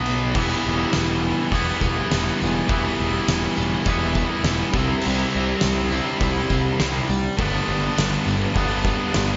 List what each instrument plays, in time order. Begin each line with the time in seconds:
Already playing: picked electric bass B1, overdriven electric guitar B2 F#3 B3
0.06 ride, tambourine
0.35 picked electric bass E1, overdriven electric guitar E3 G3 B3 E4, kick, crash, tambourine
0.67 picked electric bass E1
0.93 picked electric bass E1, snare, open hi-hat, tambourine
1.51 picked electric bass E1, overdriven electric guitar E3 G3 B3 E4, kick, open hi-hat, tambourine
1.81 picked electric bass E1, kick, tambourine
2.12 picked electric bass E1, snare, open hi-hat, tambourine
2.41 picked electric bass E1, tambourine
2.68 picked electric bass E1, overdriven electric guitar E3 G3 B3 E4, kick, open hi-hat, tambourine
3.00 picked electric bass E1
3.28 picked electric bass E1, snare, open hi-hat, tambourine
3.57 picked electric bass E1, tambourine
3.85 picked electric bass E1, overdriven electric guitar E3 G3 B3 E4, kick, open hi-hat, tambourine
4.15 kick, tambourine
4.44 picked electric bass E1, snare, open hi-hat, tambourine
4.74 picked electric bass C2, overdriven electric guitar C3 G3 C4, kick, tambourine
4.78 overdriven electric guitar E4
5.01 crash, tambourine
5.06 picked electric bass C2
5.35 picked electric bass C2
5.61 picked electric bass C2, snare, open hi-hat, tambourine
5.91 overdriven electric guitar C3 G3 C4 E4, tambourine
6.20 picked electric bass C2, kick, open hi-hat, tambourine
6.50 picked electric bass C2, kick, tambourine
6.80 picked electric bass C2, snare, open hi-hat, tambourine
7.09 picked electric bass C2, tambourine
7.37 picked electric bass G1, overdriven electric guitar G2 D3 G3 B3 D4, kick, open hi-hat, tambourine
7.68 picked electric bass G1, tambourine
7.97 picked electric bass G1, snare, open hi-hat, tambourine
8.27 picked electric bass G1, tambourine
8.54 picked electric bass G1, overdriven electric guitar G2 D3 G3 B3 D4, kick, open hi-hat
8.58 tambourine
8.85 kick, tambourine
9.14 picked electric bass G1, snare, open hi-hat, tambourine